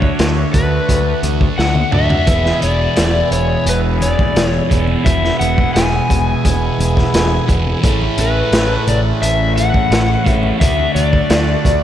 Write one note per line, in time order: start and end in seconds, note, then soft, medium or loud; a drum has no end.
0.00 1.90 D3 medium
0.00 1.91 A3 loud
0.00 2.23 A3 medium
0.00 1.91 D4 medium
0.00 2.24 D4 medium
0.00 2.25 F#4 medium
0.00 2.23 A4 medium
0.00 0.58 C#5 medium
0.00 kick medium
0.19 0.43 D2 medium
0.19 snare medium
0.19 closed hi-hat medium
0.53 0.78 D2 medium
0.53 1.19 B4 medium
0.53 kick medium
0.53 closed hi-hat medium
0.53 low conga medium
0.89 1.13 D2 medium
0.89 kick medium
0.89 closed hi-hat medium
1.23 1.47 D2 medium
1.23 closed hi-hat medium
1.23 high conga medium
1.41 kick medium
1.58 1.83 D2 medium
1.58 1.94 F#5 loud
1.58 snare soft
1.75 high tom soft
1.92 2.17 D2 medium
1.92 2.26 D3 medium
1.92 2.26 A3 medium
1.92 2.25 D4 medium
1.92 2.63 E5 medium
1.92 mid tom medium
1.92 low conga medium
2.10 floor tom medium
2.10 high conga medium
2.26 2.51 E1 medium
2.26 4.68 E2 medium
2.26 4.69 B2 medium
2.26 4.69 E3 medium
2.26 7.78 G#3 medium
2.26 7.78 B3 medium
2.26 10.55 E4 medium
2.26 7.78 G#4 medium
2.26 kick loud
2.26 closed hi-hat medium
2.26 low conga medium
2.45 snare soft
2.45 high conga medium
2.61 2.87 E1 medium
2.61 3.28 D5 medium
2.61 closed hi-hat soft
2.61 high conga medium
2.96 3.22 E1 medium
2.96 snare medium
2.96 closed hi-hat medium
3.31 3.55 E1 medium
3.31 3.65 C#5 medium
3.31 closed hi-hat medium
3.66 4.14 E1 medium
3.66 3.78 B4 medium
3.66 closed hi-hat medium
4.00 4.47 D5 medium
4.00 closed hi-hat medium
4.00 high conga medium
4.19 kick medium
4.35 4.59 E1 medium
4.35 snare loud
4.35 closed hi-hat medium
4.35 high conga medium
4.47 4.67 C#5 medium
4.70 4.95 E1 medium
4.70 5.03 E2 medium
4.70 5.03 B2 medium
4.70 5.06 E3 medium
4.70 kick medium
4.70 closed hi-hat medium
4.70 low conga medium
4.87 high conga medium
5.04 5.30 E1 loud
5.04 7.46 E2 medium
5.04 7.46 B2 loud
5.04 7.46 E3 loud
5.04 5.39 E5 medium
5.04 kick loud
5.04 closed hi-hat medium
5.04 low conga medium
5.22 snare soft
5.22 high conga medium
5.39 5.65 E1 medium
5.39 5.74 F#5 medium
5.39 closed hi-hat medium
5.39 high conga medium
5.58 kick medium
5.74 5.99 E1 medium
5.74 7.44 G#5 medium
5.74 snare medium
5.74 closed hi-hat medium
6.10 6.34 E1 medium
6.10 kick medium
6.10 closed hi-hat medium
6.10 low conga medium
6.45 6.69 E1 medium
6.45 kick medium
6.45 closed hi-hat medium
6.79 7.03 E1 medium
6.79 closed hi-hat medium
6.79 high conga medium
6.97 kick medium
6.97 snare soft
7.14 7.38 E1 medium
7.14 snare loud
7.14 closed hi-hat medium
7.14 high conga medium
7.48 7.73 E1 medium
7.48 7.82 E2 medium
7.48 7.81 B2 medium
7.48 7.80 E3 medium
7.48 kick medium
7.48 closed hi-hat medium
7.48 low conga medium
7.67 high conga medium
7.82 8.07 A1 medium
7.82 10.23 A2 loud
7.82 10.58 C#3 medium
7.82 10.24 E3 medium
7.82 10.23 A3 loud
7.82 10.58 A3 medium
7.82 11.83 A4 medium
7.82 kick loud
7.82 closed hi-hat medium
7.82 low conga medium
8.02 high conga medium
8.17 8.42 A1 medium
8.17 8.91 B4 medium
8.17 closed hi-hat medium
8.17 high conga medium
8.52 8.76 A1 medium
8.52 snare loud
8.52 closed hi-hat medium
8.87 9.11 A1 medium
8.87 8.98 D5 medium
8.87 closed hi-hat medium
8.87 low conga medium
9.22 9.70 A1 medium
9.22 9.56 E5 loud
9.22 closed hi-hat medium
9.56 10.31 F#5 loud
9.56 closed hi-hat medium
9.56 high conga medium
9.74 kick medium
9.91 10.15 A1 medium
9.91 snare loud
9.91 closed hi-hat medium
9.91 high conga medium
10.24 10.50 A1 medium
10.24 10.59 A2 medium
10.24 10.58 E3 medium
10.24 10.58 A3 medium
10.24 kick medium
10.24 closed hi-hat medium
10.24 low conga medium
10.31 10.60 E5 loud
10.43 high conga medium
10.59 10.85 D2 medium
10.59 11.83 D3 medium
10.59 11.83 A3 medium
10.59 11.83 D4 medium
10.59 11.83 F#4 medium
10.59 10.94 E5 medium
10.59 kick loud
10.59 closed hi-hat medium
10.59 low conga medium
10.80 high conga medium
10.95 11.19 D2 medium
10.95 11.83 D5 medium
10.95 closed hi-hat medium
10.95 high conga medium
10.95 low conga medium
11.13 kick medium
11.30 11.54 D2 medium
11.30 snare loud
11.30 closed hi-hat medium
11.64 11.83 D2 medium
11.64 kick medium
11.64 closed hi-hat medium
11.64 low conga medium